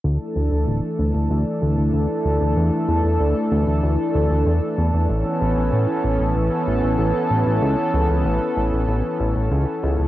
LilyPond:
<<
  \new Staff \with { instrumentName = "Analog synth pad" } { \time 4/4 \key a \mixolydian \tempo 4 = 95 <e a d' a'>1~ | <e a d' a'>1 | <e b cis' a'>1~ | <e b cis' a'>1 | }
  \new Staff \with { instrumentName = "Analog synth bass" } { \clef bass \time 4/4 \key a \mixolydian d,16 r16 d,16 d,16 d,,16 r16 d,16 d,16 d,16 r16 d,16 d,16 d,16 r16 d,16 d,16 | e,16 r16 e,16 e,16 d,16 r16 d,16 d,16 d,16 r16 d,16 d,16 e,16 r16 e,16 e,16 | a,,16 r16 a,,16 a,,16 a,16 r16 a,,16 a,,16 a,,16 r16 a,,16 a,,16 a,,16 r16 a,,16 a,,16 | cis,16 r16 cis,16 cis,16 a,,16 r16 a,,16 a,,16 a,,16 r16 a,,16 a,,16 cis,16 r16 cis,16 cis,16 | }
>>